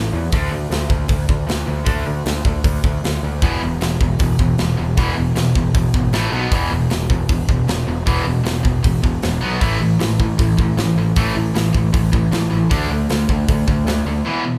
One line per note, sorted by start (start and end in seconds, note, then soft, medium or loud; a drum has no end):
0.00 0.11 A2 medium
0.00 0.11 E3 medium
0.13 0.27 E2 medium
0.13 0.30 A2 medium
0.13 0.31 E3 medium
0.32 0.47 D2 loud
0.32 0.50 D3 medium
0.32 0.51 A3 medium
0.32 0.51 D4 loud
0.32 kick loud
0.32 open hi-hat medium
0.51 0.66 D2 loud
0.51 0.69 D3 medium
0.51 0.69 A3 medium
0.70 0.85 D2 medium
0.70 0.88 D3 medium
0.70 0.88 A3 loud
0.70 snare loud
0.70 open hi-hat medium
0.89 1.04 D2 medium
0.89 1.07 D3 medium
0.89 1.07 A3 medium
0.89 kick medium
1.08 1.24 D2 medium
1.08 1.26 D3 medium
1.08 1.26 A3 medium
1.08 kick loud
1.08 open hi-hat medium
1.29 1.43 D2 medium
1.29 1.45 D3 medium
1.29 1.45 A3 medium
1.29 kick medium
1.47 1.62 D2 medium
1.47 1.65 D3 medium
1.47 1.65 A3 medium
1.47 snare loud
1.47 open hi-hat medium
1.66 1.82 D2 medium
1.66 1.83 D3 medium
1.66 1.84 A3 medium
1.84 2.01 D2 loud
1.84 2.04 D3 medium
1.84 2.04 A3 medium
1.84 2.05 D4 loud
1.84 kick loud
1.84 open hi-hat medium
2.05 2.21 D2 medium
2.05 2.23 D3 medium
2.05 2.23 A3 medium
2.26 2.40 D2 medium
2.26 2.43 D3 medium
2.26 2.44 A3 medium
2.26 snare loud
2.26 open hi-hat medium
2.45 2.59 D2 medium
2.45 2.63 D3 medium
2.45 2.63 A3 medium
2.45 kick medium
2.64 2.79 D2 loud
2.64 2.82 D3 medium
2.64 2.82 A3 medium
2.64 kick loud
2.64 open hi-hat medium
2.84 2.98 D2 medium
2.84 3.02 D3 medium
2.84 3.02 A3 medium
2.84 kick medium
3.04 3.18 D2 medium
3.04 3.21 D3 medium
3.04 3.22 A3 medium
3.04 snare loud
3.04 open hi-hat medium
3.23 3.44 D2 medium
3.23 3.41 D3 medium
3.23 3.41 A3 medium
3.42 3.57 E1 loud
3.42 3.60 E2 medium
3.42 3.61 B2 medium
3.42 3.61 E3 loud
3.42 kick loud
3.42 open hi-hat medium
3.62 3.76 E1 medium
3.62 3.79 E2 medium
3.62 3.79 B2 medium
3.81 3.96 E1 medium
3.81 3.98 E2 medium
3.81 3.99 B2 medium
3.81 snare loud
3.81 open hi-hat medium
4.01 4.15 E1 medium
4.01 4.18 E2 medium
4.01 4.19 B2 medium
4.01 kick medium
4.19 4.34 E1 medium
4.19 4.37 E2 medium
4.19 4.38 B2 medium
4.19 kick loud
4.19 open hi-hat medium
4.39 4.54 E1 medium
4.39 4.57 E2 medium
4.39 4.57 B2 medium
4.39 kick medium
4.58 4.74 E1 medium
4.58 4.76 E2 medium
4.58 4.77 B2 medium
4.58 snare loud
4.58 open hi-hat soft
4.79 4.93 E1 medium
4.79 4.96 E2 medium
4.79 4.96 B2 medium
4.97 5.12 E1 loud
4.97 5.15 E2 medium
4.97 5.16 B2 medium
4.97 5.16 E3 loud
4.97 kick loud
4.97 open hi-hat medium
5.16 5.32 E1 medium
5.16 5.34 E2 medium
5.16 5.34 B2 medium
5.36 5.50 E1 medium
5.36 5.54 E2 medium
5.36 5.54 B2 medium
5.36 snare loud
5.36 open hi-hat medium
5.55 5.70 E1 medium
5.55 5.73 E2 medium
5.55 5.73 B2 medium
5.55 kick medium
5.74 5.89 E1 medium
5.74 5.92 E2 medium
5.74 5.92 B2 medium
5.74 kick loud
5.74 open hi-hat medium
5.94 6.08 G#1 medium
5.94 6.12 E2 medium
5.94 6.12 B2 medium
5.94 kick medium
6.13 6.27 A1 medium
6.13 6.30 A2 medium
6.13 6.31 E3 loud
6.13 6.31 A3 medium
6.13 snare loud
6.13 open hi-hat medium
6.31 6.47 B1 medium
6.31 6.50 B2 loud
6.31 6.50 F#3 loud
6.31 6.50 B3 loud
6.51 6.66 E1 loud
6.51 6.69 E2 medium
6.51 6.70 B2 medium
6.51 6.70 E3 loud
6.51 kick loud
6.51 open hi-hat medium
6.70 6.86 E1 loud
6.70 6.88 E2 medium
6.70 6.89 B2 medium
6.90 7.05 E1 medium
6.90 7.08 E2 medium
6.90 7.08 B2 medium
6.90 snare loud
6.90 open hi-hat medium
7.10 7.24 E1 medium
7.10 7.27 E2 medium
7.10 7.28 B2 medium
7.10 kick medium
7.29 7.44 E1 medium
7.29 7.47 E2 medium
7.29 7.47 B2 medium
7.29 kick loud
7.29 open hi-hat medium
7.49 7.63 E1 medium
7.49 7.66 E2 medium
7.49 7.66 B2 medium
7.49 kick medium
7.67 7.83 E1 medium
7.67 7.85 E2 medium
7.67 7.86 B2 medium
7.67 snare loud
7.67 open hi-hat soft
7.87 8.02 E1 medium
7.87 8.05 E2 medium
7.87 8.05 B2 medium
8.06 8.22 E1 loud
8.06 8.25 E2 medium
8.06 8.25 B2 loud
8.06 8.25 E3 medium
8.06 kick loud
8.06 open hi-hat medium
8.25 8.40 E1 medium
8.25 8.44 E2 medium
8.25 8.44 B2 medium
8.45 8.59 E1 medium
8.45 8.63 E2 medium
8.45 8.63 B2 medium
8.45 snare loud
8.45 open hi-hat medium
8.64 8.79 E1 medium
8.64 8.82 E2 medium
8.64 8.82 B2 medium
8.64 kick medium
8.84 8.99 E1 medium
8.84 9.01 E2 medium
8.84 9.02 B2 medium
8.84 kick loud
8.84 open hi-hat medium
9.02 9.18 E1 medium
9.02 9.20 E2 medium
9.02 9.21 B2 medium
9.02 kick medium
9.22 9.38 E1 medium
9.22 9.40 E2 medium
9.22 9.40 B2 medium
9.22 snare loud
9.22 open hi-hat medium
9.41 9.57 B1 medium
9.41 9.59 B2 loud
9.41 9.60 F#3 medium
9.41 9.60 B3 loud
9.60 9.76 A1 loud
9.60 9.78 A2 medium
9.60 9.78 E3 medium
9.60 9.79 A3 medium
9.60 kick loud
9.60 open hi-hat medium
9.79 9.95 A1 medium
9.79 9.97 A2 medium
9.79 9.97 E3 medium
9.99 10.14 A1 medium
9.99 10.17 A2 medium
9.99 10.18 E3 medium
9.99 snare loud
9.99 open hi-hat medium
10.20 10.34 A1 medium
10.20 10.37 A2 medium
10.20 10.37 E3 medium
10.20 kick medium
10.39 10.53 A1 medium
10.39 10.57 A2 medium
10.39 10.57 E3 medium
10.39 kick loud
10.39 open hi-hat soft
10.58 10.73 A1 loud
10.58 10.77 A2 medium
10.58 10.77 E3 medium
10.58 kick medium
10.77 10.92 A1 medium
10.77 10.96 A2 medium
10.77 10.96 E3 medium
10.77 snare loud
10.77 open hi-hat medium
10.96 11.11 A1 medium
10.96 11.15 A2 medium
10.96 11.15 E3 medium
11.16 11.31 A1 loud
11.16 11.35 A2 medium
11.16 11.35 E3 medium
11.16 11.35 A3 loud
11.16 kick loud
11.16 open hi-hat medium
11.35 11.50 A1 loud
11.35 11.54 A2 medium
11.35 11.54 E3 medium
11.55 11.69 A1 medium
11.55 11.73 A2 medium
11.55 11.73 E3 medium
11.55 snare loud
11.55 open hi-hat medium
11.75 11.89 A1 medium
11.75 11.91 A2 medium
11.75 11.92 E3 medium
11.75 kick medium
11.93 12.08 A1 medium
11.93 12.11 A2 medium
11.93 12.11 E3 medium
11.93 kick loud
11.93 open hi-hat medium
12.13 12.28 A1 loud
12.13 12.31 A2 medium
12.13 12.31 E3 medium
12.13 kick medium
12.32 12.47 A1 medium
12.32 12.50 A2 medium
12.32 12.50 E3 medium
12.32 snare loud
12.32 open hi-hat medium
12.52 12.66 A1 medium
12.52 12.69 A2 medium
12.52 12.70 E3 medium
12.71 12.86 D2 medium
12.71 12.90 D3 medium
12.71 12.89 A3 medium
12.71 12.90 D4 medium
12.71 kick loud
12.71 open hi-hat medium
12.90 13.05 D2 medium
12.90 13.08 D3 medium
12.90 13.09 A3 medium
13.09 13.24 D2 medium
13.09 13.27 D3 medium
13.09 13.28 A3 medium
13.09 snare loud
13.09 open hi-hat medium
13.29 13.44 D2 medium
13.29 13.47 D3 medium
13.29 13.47 A3 medium
13.29 kick medium
13.48 13.63 D2 medium
13.48 13.67 D3 medium
13.48 13.67 A3 medium
13.48 kick loud
13.48 open hi-hat medium
13.68 13.82 D2 medium
13.68 13.86 D3 medium
13.68 13.86 A3 medium
13.68 kick medium
13.85 14.00 D2 medium
13.85 14.05 D3 medium
13.85 14.05 A3 medium
13.85 snare loud
13.85 open hi-hat medium
14.06 14.20 D2 medium
14.06 14.24 D3 medium
14.06 14.24 A3 medium
14.26 14.43 E2 medium
14.26 14.44 B2 medium
14.26 14.44 E3 loud
14.44 14.58 E2 medium
14.44 14.58 B2 medium